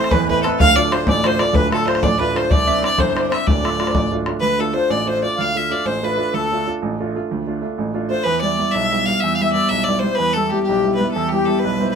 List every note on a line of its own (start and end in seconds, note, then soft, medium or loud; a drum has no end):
0.00 0.56 A1 medium
0.00 0.23 A3 soft
0.00 0.23 C4 medium
0.00 0.23 E4 medium
0.00 0.11 C5 medium
0.00 0.12 C5 medium
0.00 0.13 C5 medium
0.04 bodhran medium
0.11 0.44 E2 medium
0.11 0.28 B4 medium
0.11 0.29 B4 medium
0.11 bodhran medium
0.28 0.44 A3 medium
0.28 0.44 C4 soft
0.28 0.45 E4 medium
0.28 0.42 B4 medium
0.28 0.44 B4 medium
0.28 0.61 B4 medium
0.28 bodhran soft
0.42 0.58 A3 soft
0.42 0.57 C4 medium
0.42 0.58 E4 medium
0.42 0.50 A4 medium
0.42 0.59 A4 medium
0.42 bodhran medium
0.59 1.52 D1 medium
0.59 0.92 D2 medium
0.59 0.77 F5 loud
0.59 0.76 F5 medium
0.59 0.78 F5 loud
0.59 bodhran loud
0.76 0.91 A3 medium
0.76 0.90 D4 soft
0.76 0.91 F4 medium
0.76 0.94 D5 medium
0.76 0.93 D5 medium
0.76 0.92 D5 medium
0.76 bodhran soft
0.92 1.18 A3 medium
0.92 1.18 D4 soft
0.92 1.19 F4 medium
0.92 1.08 C5 medium
0.92 1.08 C5 loud
0.92 bodhran medium
1.07 1.39 A1 medium
1.07 1.24 D5 medium
1.07 1.26 D5 medium
1.07 1.28 D5 medium
1.07 bodhran medium
1.24 1.37 A3 medium
1.24 1.37 D4 medium
1.24 1.38 F4 medium
1.24 1.41 C5 medium
1.24 1.39 C5 medium
1.24 1.41 C5 loud
1.24 bodhran medium
1.39 1.65 A3 medium
1.39 1.65 D4 soft
1.39 1.66 F4 medium
1.39 1.56 D5 medium
1.39 1.55 D5 medium
1.39 bodhran medium
1.53 2.46 D1 medium
1.53 1.86 D2 medium
1.53 1.72 B4 medium
1.53 1.73 B4 medium
1.53 1.72 B4 medium
1.53 bodhran medium
1.71 1.85 A3 medium
1.71 1.85 D4 soft
1.71 1.86 F4 soft
1.71 1.88 A4 medium
1.71 1.87 A4 medium
1.71 bodhran medium
1.86 2.13 A3 medium
1.86 2.13 D4 soft
1.86 2.14 F4 medium
1.86 2.05 C5 medium
1.86 2.03 C5 medium
1.86 2.02 C5 medium
1.86 bodhran medium
1.95 bodhran medium
2.02 2.34 A1 medium
2.02 2.21 D5 medium
2.02 2.19 D5 medium
2.02 bodhran medium
2.19 2.33 A3 medium
2.19 2.34 D4 medium
2.19 2.34 F4 medium
2.19 2.36 B4 medium
2.19 2.34 B4 medium
2.19 2.39 B4 medium
2.19 bodhran soft
2.34 2.47 A3 soft
2.34 2.48 D4 medium
2.34 2.48 F4 medium
2.34 2.49 C5 medium
2.34 2.51 C5 medium
2.34 2.52 C5 medium
2.34 bodhran medium
2.49 2.83 C2 medium
2.49 2.82 D5 medium
2.49 2.83 D5 medium
2.49 2.67 D5 medium
2.49 bodhran medium
2.67 2.82 C4 medium
2.67 2.82 D4 soft
2.67 2.82 E4 medium
2.67 2.82 E5 medium
2.67 bodhran soft
2.82 3.09 C4 medium
2.82 3.10 D4 medium
2.82 3.10 E4 medium
2.82 2.97 D5 medium
2.82 2.98 D5 medium
2.82 3.01 D5 loud
2.82 bodhran medium
2.98 3.30 G1 medium
2.98 3.15 C5 medium
2.98 3.33 C5 medium
2.98 3.31 C5 medium
2.98 bodhran medium
3.15 3.29 C4 soft
3.15 3.29 D4 soft
3.15 3.30 E4 medium
3.15 3.30 D5 medium
3.15 bodhran medium
3.31 3.43 C4 medium
3.31 3.43 D4 soft
3.31 3.44 E4 soft
3.31 3.48 E5 medium
3.31 3.46 E5 medium
3.31 3.47 E5 medium
3.31 bodhran medium
3.46 4.39 D1 medium
3.46 3.79 D2 medium
3.46 4.12 D5 medium
3.46 4.08 D5 medium
3.46 3.65 D5 medium
3.46 bodhran medium
3.64 3.77 A3 soft
3.64 3.78 D4 soft
3.64 3.78 F4 soft
3.64 3.69 E5 medium
3.64 bodhran medium
3.69 3.84 D5 medium
3.79 4.05 A3 soft
3.79 4.05 D4 soft
3.79 4.05 F4 medium
3.79 bodhran medium
3.86 3.90 C5 soft
3.86 bodhran medium
3.91 4.26 A1 medium
3.91 4.11 D5 medium
3.91 bodhran medium
4.12 4.26 A3 medium
4.12 4.27 D4 medium
4.12 4.27 F4 medium
4.12 bodhran soft
4.26 4.40 A3 soft
4.26 4.40 D4 soft
4.26 4.40 F4 medium
4.26 bodhran medium
4.40 4.74 D2 medium
4.40 4.62 B4 loud
4.40 4.60 B4 medium
4.59 4.72 A3 medium
4.59 4.73 D4 soft
4.59 4.73 F4 medium
4.59 4.75 A4 medium
4.73 5.00 A3 medium
4.73 5.00 D4 soft
4.73 5.01 F4 medium
4.73 4.92 C5 medium
4.73 4.91 C5 medium
4.90 5.22 A1 medium
4.90 5.09 D5 medium
5.05 5.21 A3 medium
5.05 5.21 D4 soft
5.05 5.21 F4 soft
5.05 5.23 C5 loud
5.05 5.24 C5 medium
5.22 5.49 A3 soft
5.22 5.49 D4 soft
5.22 5.49 F4 medium
5.22 5.39 D5 medium
5.22 5.42 D5 medium
5.37 5.70 D2 medium
5.37 5.87 F5 medium
5.37 5.58 F5 loud
5.55 5.69 A3 soft
5.55 5.70 D4 soft
5.55 5.70 F4 soft
5.55 5.73 E5 medium
5.70 5.97 A3 medium
5.70 5.97 D4 soft
5.70 5.97 F4 medium
5.70 5.87 D5 medium
5.85 6.17 A1 medium
5.85 6.05 C5 loud
5.85 6.04 C5 medium
6.03 6.16 A3 soft
6.03 6.16 D4 soft
6.03 6.17 F4 soft
6.03 6.35 B4 medium
6.17 6.44 A3 medium
6.17 6.44 D4 medium
6.17 6.45 F4 medium
6.33 6.66 D2 medium
6.33 6.68 A4 medium
6.33 6.70 A4 medium
6.52 6.65 A3 medium
6.52 6.66 D4 soft
6.52 6.66 F4 medium
6.67 6.93 A3 soft
6.67 6.93 D4 soft
6.67 6.93 F4 medium
6.82 7.14 A1 medium
7.00 7.14 A3 medium
7.00 7.14 D4 soft
7.00 7.15 F4 medium
7.15 7.41 A3 soft
7.15 7.42 D4 soft
7.15 7.42 F4 medium
7.31 7.62 D2 medium
7.47 7.60 A3 soft
7.47 7.61 D4 soft
7.47 7.61 F4 soft
7.62 7.88 A3 medium
7.62 7.89 D4 soft
7.62 7.89 F4 medium
7.78 8.10 A1 medium
7.94 8.08 A3 medium
7.94 8.08 D4 soft
7.94 8.08 F4 medium
8.09 8.22 A3 medium
8.09 8.22 D4 soft
8.09 8.22 F4 medium
8.09 8.25 C5 medium
8.09 8.27 C5 medium
8.23 8.58 E2 medium
8.23 8.40 B4 loud
8.23 8.43 B4 medium
8.41 8.57 G3 soft
8.41 8.58 B3 soft
8.41 8.58 E4 medium
8.41 8.73 D5 loud
8.41 8.75 D5 medium
8.59 8.85 G3 soft
8.59 8.85 B3 soft
8.59 8.85 E4 medium
8.71 9.06 B1 medium
8.71 9.07 E5 loud
8.71 9.04 E5 medium
8.92 9.06 G3 medium
8.92 9.07 B3 soft
8.92 9.07 E4 medium
9.05 9.33 G3 soft
9.05 9.34 B3 soft
9.05 9.34 E4 medium
9.05 9.21 F5 loud
9.05 9.22 F5 medium
9.20 9.54 E2 medium
9.20 9.37 E5 loud
9.20 9.33 E5 medium
9.35 9.43 F5 medium
9.40 9.53 G3 soft
9.40 9.53 B3 soft
9.40 9.53 E4 soft
9.40 9.52 E5 medium
9.45 9.70 E5 loud
9.52 9.81 G3 soft
9.52 9.81 B3 soft
9.52 9.81 E4 medium
9.52 9.70 D5 loud
9.69 10.02 B1 medium
9.69 9.85 E5 loud
9.84 10.01 D5 loud
9.88 10.02 G3 medium
9.88 10.02 B3 soft
9.88 10.02 E4 medium
9.88 10.04 D5 medium
9.99 10.17 C5 medium
10.03 10.29 G3 medium
10.03 10.29 B3 soft
10.03 10.30 E4 medium
10.15 10.50 E2 medium
10.15 10.35 B4 loud
10.20 10.37 B4 medium
10.33 10.51 G3 soft
10.33 10.51 A4 medium
10.33 10.50 A4 medium
10.37 10.52 B3 soft
10.37 10.52 E4 medium
10.50 10.78 G3 soft
10.50 10.79 B3 soft
10.50 10.79 E4 medium
10.50 10.62 G4 medium
10.50 10.65 G4 medium
10.63 10.94 G4 medium
10.63 11.00 G4 medium
10.69 10.99 B1 medium
10.84 10.99 G3 soft
10.84 10.99 B3 soft
10.84 11.00 E4 medium
10.95 11.11 B4 medium
10.99 11.26 G3 soft
10.99 11.26 B3 soft
10.99 11.27 E4 medium
10.99 11.14 B4 medium
11.11 11.30 A4 medium
11.11 11.32 A4 medium
11.16 11.47 E2 medium
11.28 11.47 G4 medium
11.33 11.46 G3 soft
11.33 11.46 B3 soft
11.33 11.47 E4 soft
11.33 11.65 G4 medium
11.45 11.74 G3 medium
11.45 11.74 B3 soft
11.45 11.74 E4 medium
11.45 11.60 A4 medium
11.59 11.91 B4 medium
11.63 11.95 B1 medium
11.63 11.79 B4 medium
11.80 11.95 G3 soft
11.80 11.95 B3 soft
11.80 11.95 E4 medium
11.80 11.95 C5 medium
11.91 11.95 B4 medium